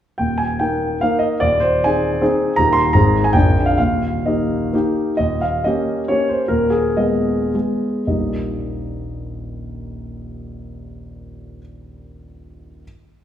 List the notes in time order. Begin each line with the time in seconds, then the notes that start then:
0.18 D#1 D#2 G5
0.38 G#5
0.59 A#3 D#4 A#4 G5
1.01 A#3 D#4 A#4 F5
1.19 D#5
1.40 D#1 D#2 D5
1.60 C5
1.84 C4 D#4 G#4 G#5
2.21 C4 D#4 G#4
2.56 D#1 D#2 A#3 D#4 G4 A#5
2.73 C6
2.93 G#1 G#2 C4 D#4 G#4 A#5
3.24 G#5
3.33 A#0 A#1 A#3 D4 G#4 G5
3.66 F5
3.78 D#1 D#2 F5
4.26 A#3 D#4 G4 D#5
4.73 A#3 D#4 G4
5.17 D#1 D#2 D#5
5.41 F5
5.64 A#3 C#4 G4 D#5
6.08 A#3 C#4 G4 C#5
6.29 C5
6.48 D#1 D#2 A#4
6.70 G#4
6.97 G#3 B3 G#4 D#5
7.55 G#3 B3 G#4
8.07 D#1 A#1 G3 A#3 D#4 G4 D#5